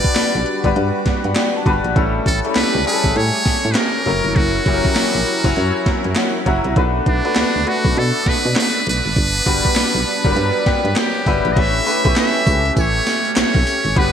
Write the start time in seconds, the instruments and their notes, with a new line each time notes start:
Already playing: grand piano G3 D4 F#4 B4, analog synth pad G3 D4 F#4 B4, muted trumpet D5
0.04 kick, closed hi-hat
0.15 fm bass B1, snare, clap, closed hi-hat
0.35 fm bass B1
0.46 closed hi-hat
0.64 fm bass G1, grand piano G3 D4 F#4 B4, kick, closed hi-hat
0.76 fm bass G2, closed hi-hat
1.06 fm bass G2, grand piano D5, kick, snare, closed hi-hat
1.24 fm bass G2, grand piano F#5, closed hi-hat
1.35 grand piano G5, snare, clap, closed hi-hat
1.57 grand piano A5
1.66 fm bass G1, grand piano G3 D4 F#4 B4, kick, closed hi-hat
1.76 grand piano B5
1.84 fm bass A#1, closed hi-hat
1.95 fm bass A1, grand piano G3 C#4 E4 A4, analog synth pad A3 C#4 G4, kick, closed hi-hat
2.26 fm bass A1, muted trumpet A4, kick, closed hi-hat
2.44 grand piano G3 C#4 E4 A4, closed hi-hat
2.55 fm bass C#2, muted trumpet B4, snare, clap, closed hi-hat
2.75 fm bass C#2
2.86 grand piano G3 C#4 E4 G#4, muted trumpet B4, closed hi-hat
2.94 grand piano A4
3.04 fm bass A1, kick, closed hi-hat
3.16 fm bass A2, muted trumpet C#5, closed hi-hat
3.45 fm bass A2, kick, snare, closed hi-hat
3.64 fm bass A2, closed hi-hat
3.72 muted trumpet B4, snare, clap, closed hi-hat
3.76 muted trumpet A#4
4.06 fm bass F#1, analog synth pad F#3 E4 A#4, grand piano F#3 C#4 E4 A#4, closed hi-hat
4.24 fm bass G1, closed hi-hat
4.36 fm bass F#1, muted trumpet F#4, kick, closed hi-hat
4.66 fm bass F#1, grand piano F#3 C#4 E4 G4, kick, closed hi-hat
4.74 grand piano A#4
4.85 kick, closed hi-hat
4.95 fm bass A#1, snare, clap, closed hi-hat
5.15 fm bass A#1
5.26 closed hi-hat
5.44 fm bass F#1, grand piano F#3 C#4 E4 C#5, kick, closed hi-hat
5.56 fm bass F#2, closed hi-hat
5.86 fm bass F#2, kick, snare, closed hi-hat
6.04 fm bass F#2, closed hi-hat
6.15 grand piano F#5, snare, clap, closed hi-hat
6.46 fm bass F#1, grand piano F#3 C#4 E4 F#4 A#5, kick, closed hi-hat
6.64 fm bass C2, closed hi-hat
6.76 fm bass B1, analog synth pad A3 B3 D4, grand piano A3 D4 F#4 B4, kick, closed hi-hat
7.06 fm bass B1, muted trumpet D4, kick, closed hi-hat
7.24 grand piano A3 D4 F#4 B4, closed hi-hat
7.35 fm bass D2, snare, clap, closed hi-hat
7.56 fm bass D2
7.66 grand piano A3 D4 F#4 B4, muted trumpet F#4, closed hi-hat
7.85 fm bass B1, kick, closed hi-hat
7.97 fm bass B2, muted trumpet A4, closed hi-hat
8.26 fm bass B2, muted trumpet B4, kick, snare, closed hi-hat
8.45 fm bass B2, closed hi-hat
8.55 muted trumpet B4, snare, clap, closed hi-hat
8.86 fm bass B1, muted trumpet B4, closed hi-hat
9.05 fm bass G#1, closed hi-hat
9.16 fm bass G1, analog synth pad B3 B4, kick, closed hi-hat
9.46 fm bass G1, grand piano G3 D4 F#4 B4, kick, closed hi-hat
9.65 kick, closed hi-hat
9.75 fm bass B1, snare, clap, closed hi-hat
9.95 fm bass B1
10.06 open hi-hat
10.24 fm bass G1, grand piano F#3 G3 D4 A#4, kick, closed hi-hat
10.32 grand piano B4
10.36 fm bass G2, closed hi-hat
10.66 fm bass G2, grand piano G5, kick, snare, closed hi-hat
10.85 fm bass G2, closed hi-hat
10.96 muted trumpet G4, grand piano G5, snare, clap, closed hi-hat
11.26 fm bass G1, grand piano G3 D4 F#4 B4 E5, kick, open hi-hat
11.45 fm bass A#1, closed hi-hat
11.53 fm bass A1, grand piano A3 C#4 E4, analog synth pad G4, muted trumpet D#5, kick, closed hi-hat, crash
11.57 analog synth pad A3 C#4, grand piano G4 B4, muted trumpet E5
11.86 grand piano A3 C#4 E4 G4 B4, closed hi-hat, tambourine
12.04 fm bass B1, grand piano A3 C#4 E4 G4 B4, kick, closed hi-hat
12.16 muted trumpet E5, snare, clap, closed hi-hat, tambourine
12.47 fm bass C#2, kick, closed hi-hat, tambourine
12.65 closed hi-hat
12.77 fm bass A1, muted trumpet C#5, kick, closed hi-hat, tambourine
13.07 snare, closed hi-hat, tambourine
13.25 closed hi-hat
13.36 fm bass B1, muted trumpet C#5, snare, clap, closed hi-hat, tambourine
13.55 fm bass B1, kick
13.67 open hi-hat, tambourine
13.85 fm bass G#1, closed hi-hat
13.96 fm bass G1, grand piano G3 B3 D4 F#4 B4, analog synth pad G3 D4 B4 F#5, muted trumpet B4, kick, closed hi-hat